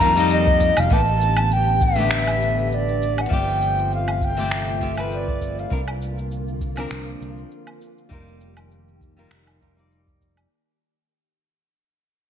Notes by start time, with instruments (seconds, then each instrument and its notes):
Already playing: string machine D#3 A#3 G4, flute A#5
0.00 fingered electric bass F2, nylon-string guitar G3 D#4 F4 A#4, kick, open hi-hat, shaker
0.16 nylon-string guitar G3 D#4 F4 D#5, open hi-hat, shaker
0.30 flute D#5, open hi-hat, shaker
0.47 kick, shaker
0.60 kick, open hi-hat, shaker
0.77 fingered electric bass F1, flute F5, open hi-hat, low woodblock, shaker
0.90 fingered electric bass A1, nylon-string guitar D3 A3 B3 G4, string machine D3 B3 G4, flute A5, kick, shaker
1.08 shaker
1.21 shaker
1.37 low woodblock, shaker
1.51 flute G5, shaker
1.68 shaker
1.81 flute E5, kick, shaker
1.96 nylon-string guitar D3 A3 B3, shaker
2.00 nylon-string guitar G4
2.11 finger snap, shaker
2.27 low woodblock, shaker
2.42 shaker
2.59 shaker
2.67 flute E5
2.72 flute D5, shaker
2.89 shaker
3.02 shaker
3.18 flute F#5, low woodblock, shaker
3.29 fingered electric bass G1, string machine C3 A3 F4, nylon-string guitar F3 A3 C4, kick, shaker
3.33 nylon-string guitar G4, flute G5
3.49 shaker
3.62 shaker
3.79 shaker
3.92 flute F5, shaker
4.08 low woodblock, shaker
4.22 flute G5, kick, shaker
4.37 nylon-string guitar F3 A3 C4 G4, shaker
4.51 finger snap, shaker
4.68 shaker
4.81 nylon-string guitar F3 A3 C4 G4, kick, shaker
4.95 nylon-string guitar F3 A3 C4, low woodblock, shaker
5.00 nylon-string guitar B4
5.12 flute D5, shaker
5.28 kick, shaker
5.42 kick, shaker
5.58 flute F5, shaker
5.70 fingered electric bass C2, string machine D3 A#3 F4, nylon-string guitar F3 C4 D4 A#4, kick, shaker
5.88 low woodblock, shaker
6.02 shaker
6.18 shaker
6.32 shaker
6.48 shaker
6.61 kick, shaker
6.76 nylon-string guitar F3 C4 D4, low woodblock, shaker
6.80 nylon-string guitar A#4
6.91 fingered electric bass C2, finger snap, shaker
7.08 shaker
7.21 fingered electric bass C2, shaker
7.38 shaker
7.51 shaker
7.67 low woodblock, shaker
7.81 shaker
7.98 shaker
8.09 fingered electric bass F1, string machine D#3 G4, nylon-string guitar G3 D#4 F4 A#4, kick, shaker
8.28 shaker
8.41 shaker
8.57 low woodblock, shaker
8.71 shaker
8.88 shaker
9.01 kick, shaker
9.17 nylon-string guitar G3 D#4 F4 A#4, shaker
9.31 fingered electric bass F1, finger snap, shaker
9.47 low woodblock, shaker
9.60 nylon-string guitar G3 D#4 F4 A#4, kick, shaker
9.75 nylon-string guitar G3 D#4 F4, shaker
9.80 nylon-string guitar D5
9.92 shaker
10.08 kick, shaker
10.21 kick, shaker
10.37 low woodblock, shaker